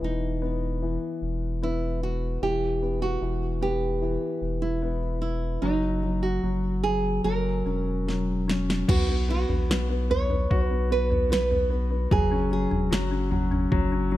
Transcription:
Already playing: E3 B3
0.02 E1 E3 D#4
0.42 B3
0.82 E3
1.22 E1
1.62 B3 E4
2.03 F#4
2.42 E1 E3 G4
2.82 B3
3.02 F#4
3.21 E1 E3
3.61 B3 G4
4.02 E3
4.42 E1
4.62 E4
4.82 B3
5.22 E4
5.62 F#1 F#3 D#4
6.03 F#3
6.23 F#4
6.43 F#1 F#3
6.84 F#3 G#4
7.24 F#1 F#3 A#4
7.66 E1 C#4
8.07 F#3, snare
8.48 C#4, snare
8.70 snare
8.88 B1 B3 F#4, kick, floor tom, crash
9.08 B3
9.29 B3 F#4
9.49 A#1 B3, floor tom
9.69 B1 B3, snare
9.89 B3
10.10 B3 C#5, floor tom
10.30 B3, floor tom
10.50 B1 F#4, kick, floor tom
10.67 B3 B4
10.90 B3 B4
11.10 B3, floor tom
11.30 B3 B4, snare
11.51 B3, floor tom
11.70 B3
11.90 B3
12.11 F#1 F#3 G#4, kick, floor tom
12.31 C#4
12.51 F#3 G#4
12.71 E1 C#4, floor tom
12.91 F#1 F#3 F#4, snare
13.11 C#4
13.31 F#3, floor tom
13.51 C#4, floor tom
13.72 F#1 F#3, kick, floor tom
13.92 C#4
14.12 F#3

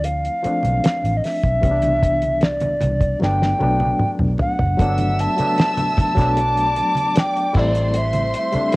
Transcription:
Already playing: D2 F3 A3 C4 E4
0.04 F5, closed hi-hat
0.25 closed hi-hat
0.43 F3 A3 C4 D4, muted fingered electric bass stroke, closed hi-hat, muted conga
0.63 B1, closed hi-hat, high conga
0.84 muted fingered electric bass stroke, snare, closed hi-hat, muted conga
1.04 A1, closed hi-hat
1.17 D#5
1.24 E5, snare, open hi-hat
1.44 B1, kick, closed hi-hat
1.61 C2 E3 G3 B3 C#4, kick, closed hi-hat
1.71 D4
1.82 closed hi-hat, high conga
2.03 kick, closed hi-hat, muted conga
2.22 closed hi-hat, high conga
2.41 D5, snare, closed hi-hat
2.60 closed hi-hat, high conga, low conga
2.81 C2, closed hi-hat, muted conga, high conga, low conga
3.01 kick, closed hi-hat
3.19 G1 F#3 A3 B3 D4 G5, snare, muted conga
3.42 snare
3.59 B1 F#3 A3 B3 D4, high tom, muted conga
3.80 high tom, high conga
3.99 muted fingered electric bass stroke, mid tom
4.19 B1, mid tom
4.38 F#5, floor tom, muted conga
4.59 F#1, floor tom
4.77 G1 F#3 A3 B3 E5 E6, kick, closed hi-hat
4.81 D4
4.98 closed hi-hat, high conga
5.19 A5, closed hi-hat, muted conga
5.37 F#3 A3 B3 D4, muted fingered electric bass stroke, closed hi-hat, high conga
5.58 snare, closed hi-hat, muted conga
5.77 closed hi-hat, high conga, low conga
5.97 A5, muted fingered electric bass stroke, kick, closed hi-hat, muted conga, high conga, low conga
6.15 B1 F#3 A3 B3 D4, kick, closed hi-hat
6.19 snare
6.36 D5 D6, closed hi-hat, muted conga
6.57 closed hi-hat
6.76 closed hi-hat, muted conga
6.95 closed hi-hat, high conga
7.16 G5, snare, closed hi-hat
7.37 closed hi-hat
7.53 A1 G3 A3 C4 E4 C5 C6, kick, snare, crash, muted conga
7.58 D5
7.75 closed hi-hat
7.94 E5, closed hi-hat
8.13 closed hi-hat, high conga
8.33 closed hi-hat, muted conga
8.38 E5
8.52 G3 A3 C4 D4, muted fingered electric bass stroke, closed hi-hat, high conga
8.72 closed hi-hat

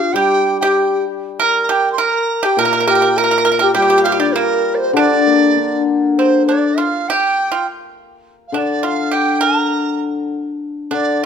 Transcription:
Already playing: G4 F5
0.01 F4
0.13 G3 G4 G5
0.60 G4 G5
1.39 A#4 A#5
1.63 A#5
1.69 G4 G5
1.92 C6
1.98 A#4 A#5
2.43 G4 G5
2.57 A#2 A#4 A#5
2.65 A#4
2.73 A#4
2.80 A#4
2.87 G4 A#4 G5
2.95 A#4
3.02 A#4
3.17 A#4 A#5
3.24 A#4
3.31 A#4
3.38 A#4
3.45 A#4
3.52 A#4
3.59 G4 A#4 G5
3.74 G3 G4 G5
3.82 G4
3.90 G4
3.98 G4
4.03 F4 G4 F5
4.12 G4
4.19 D4 G4 D5
4.33 A#3 A#4
4.74 C5 D5
4.81 C5
4.93 D3 D4 D5
5.27 A#3
5.57 D4
6.18 C4 C5
6.47 D4 D5
6.78 F4 F5
7.08 G4 G5
7.52 F4
8.48 F5
8.52 D3 D4 D5
8.83 F4 F5
9.11 G4 G5
9.41 A#4 A#5
10.91 D3 D4 D5

